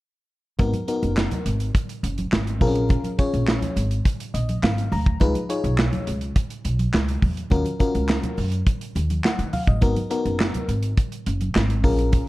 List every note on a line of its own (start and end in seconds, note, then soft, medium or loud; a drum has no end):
0.59 0.71 G#1 loud
0.59 0.74 B3 medium
0.59 0.74 D#4 medium
0.59 0.74 F#4 medium
0.59 0.74 A#4 medium
0.59 kick loud
0.59 closed hi-hat medium
0.59 low conga medium
0.73 closed hi-hat medium
0.73 high conga medium
0.88 1.46 B3 medium
0.88 1.46 D#4 medium
0.88 1.46 F#4 medium
0.88 1.46 A#4 medium
0.88 closed hi-hat medium
1.03 1.25 F#1 medium
1.03 closed hi-hat soft
1.17 snare loud
1.17 clap medium
1.17 muted conga soft
1.31 closed hi-hat soft
1.31 high conga medium
1.31 low conga medium
1.46 1.68 G#1 medium
1.46 closed hi-hat medium
1.46 muted conga soft
1.60 closed hi-hat soft
1.75 kick loud
1.75 closed hi-hat medium
1.89 closed hi-hat medium
2.03 2.26 F#1 medium
2.03 closed hi-hat medium
2.03 muted conga soft
2.18 closed hi-hat soft
2.18 high conga medium
2.32 2.61 G#1 medium
2.32 snare loud
2.32 clap medium
2.32 muted conga soft
2.47 closed hi-hat soft
2.61 2.95 A#1 medium
2.61 2.68 C4 medium
2.61 3.07 F4 medium
2.61 3.08 G#4 medium
2.61 3.08 A#4 loud
2.61 kick medium
2.61 open hi-hat medium
2.61 muted conga soft
2.61 high conga medium
2.61 low conga medium
2.67 3.10 C#4 medium
2.76 closed hi-hat medium
2.89 kick loud
2.89 closed hi-hat medium
2.89 muted conga soft
2.89 low conga medium
3.04 closed hi-hat soft
3.04 high conga medium
3.18 3.77 C#4 medium
3.18 3.77 F4 medium
3.18 3.77 G#4 medium
3.18 3.77 C#5 medium
3.18 kick medium
3.18 closed hi-hat medium
3.34 3.56 A#1 medium
3.34 closed hi-hat soft
3.48 snare loud
3.48 clap medium
3.62 closed hi-hat soft
3.62 high conga medium
3.62 low conga medium
3.76 3.99 G#1 medium
3.76 closed hi-hat medium
3.76 muted conga soft
3.91 closed hi-hat soft
4.05 kick loud
4.05 closed hi-hat medium
4.20 closed hi-hat medium
4.34 4.56 A#1 medium
4.34 4.61 D#5 medium
4.34 closed hi-hat medium
4.49 closed hi-hat soft
4.49 high conga medium
4.63 4.85 G#1 medium
4.63 4.90 F5 medium
4.63 snare loud
4.63 clap medium
4.78 closed hi-hat soft
4.92 5.14 D2 medium
4.92 5.19 A#5 medium
4.92 open hi-hat medium
4.92 muted conga soft
4.92 high conga medium
4.92 low conga medium
5.06 kick loud
5.06 closed hi-hat soft
5.20 5.32 C#2 medium
5.20 5.35 D#4 medium
5.20 5.35 F4 medium
5.20 5.36 G#4 medium
5.20 5.36 B4 medium
5.20 kick loud
5.20 closed hi-hat medium
5.20 low conga medium
5.35 closed hi-hat medium
5.35 high conga medium
5.49 6.08 D#4 medium
5.49 6.08 F4 medium
5.49 6.08 G#4 medium
5.49 6.08 C#5 medium
5.49 closed hi-hat medium
5.64 5.86 B1 medium
5.64 closed hi-hat soft
5.78 snare loud
5.78 clap loud
5.78 muted conga soft
5.93 closed hi-hat soft
5.93 high conga medium
5.93 low conga medium
6.07 6.30 C#2 medium
6.07 closed hi-hat medium
6.21 closed hi-hat soft
6.36 kick loud
6.36 closed hi-hat loud
6.36 muted conga soft
6.50 closed hi-hat medium
6.65 6.87 B1 medium
6.65 closed hi-hat medium
6.65 muted conga soft
6.79 closed hi-hat soft
6.79 high conga medium
6.93 7.16 C#2 loud
6.93 snare loud
6.93 clap medium
6.93 muted conga soft
7.09 closed hi-hat medium
7.22 7.45 E2 medium
7.22 kick medium
7.22 open hi-hat medium
7.22 muted conga soft
7.22 high conga medium
7.22 low conga medium
7.37 closed hi-hat medium
7.50 7.63 D#2 medium
7.50 7.66 C#4 medium
7.50 7.66 F4 medium
7.50 7.66 F#4 medium
7.50 7.66 A#4 medium
7.50 kick loud
7.50 closed hi-hat medium
7.50 muted conga soft
7.50 low conga medium
7.65 closed hi-hat soft
7.65 high conga medium
7.79 8.38 C#4 medium
7.79 8.38 F4 medium
7.79 8.38 F#4 medium
7.79 8.39 A#4 medium
7.79 kick medium
7.79 closed hi-hat medium
7.79 muted conga soft
7.95 8.17 C#2 medium
7.95 closed hi-hat soft
8.09 snare loud
8.09 clap medium
8.23 closed hi-hat soft
8.23 high conga medium
8.23 low conga medium
8.37 8.60 F#2 medium
8.37 open hi-hat medium
8.37 muted conga soft
8.52 closed hi-hat soft
8.67 kick loud
8.67 closed hi-hat medium
8.81 closed hi-hat medium
8.95 9.18 D#2 medium
8.95 closed hi-hat medium
8.95 muted conga soft
9.10 closed hi-hat soft
9.10 high conga medium
9.24 9.52 F#5 medium
9.24 snare loud
9.24 clap medium
9.39 9.50 D#3 medium
9.39 closed hi-hat soft
9.53 9.67 F5 medium
9.53 open hi-hat medium
9.53 muted conga soft
9.53 high conga medium
9.53 low conga medium
9.67 9.79 A1 medium
9.67 9.95 D#5 medium
9.67 kick medium
9.67 closed hi-hat medium
9.81 9.93 G#1 loud
9.81 9.96 B3 medium
9.81 9.97 D#4 medium
9.81 9.97 F#4 medium
9.81 9.97 A#4 medium
9.81 kick loud
9.81 closed hi-hat medium
9.81 muted conga soft
9.81 low conga medium
9.96 closed hi-hat medium
9.96 high conga medium
10.10 10.69 B3 medium
10.10 10.69 D#4 medium
10.10 10.69 F#4 medium
10.10 10.69 A#4 medium
10.10 closed hi-hat medium
10.25 10.48 F#1 medium
10.25 closed hi-hat soft
10.40 snare loud
10.40 clap medium
10.40 muted conga soft
10.54 closed hi-hat medium
10.54 high conga medium
10.54 low conga medium
10.68 10.91 G#1 medium
10.68 closed hi-hat medium
10.68 muted conga soft
10.83 closed hi-hat soft
10.97 kick loud
10.97 closed hi-hat medium
11.12 closed hi-hat medium
11.26 11.49 F#1 medium
11.26 closed hi-hat medium
11.41 closed hi-hat soft
11.41 high conga medium
11.55 11.84 G#1 loud
11.55 snare loud
11.55 clap medium
11.55 muted conga soft
11.70 closed hi-hat medium
11.84 12.18 A#1 loud
11.84 12.28 C#4 medium
11.84 12.28 F4 medium
11.84 12.28 G#4 medium
11.84 12.28 A#4 loud
11.84 kick medium
11.84 open hi-hat medium
11.84 muted conga soft
11.84 high conga medium
11.84 low conga medium
11.99 closed hi-hat medium
12.12 kick loud
12.12 closed hi-hat medium
12.12 muted conga soft
12.12 low conga medium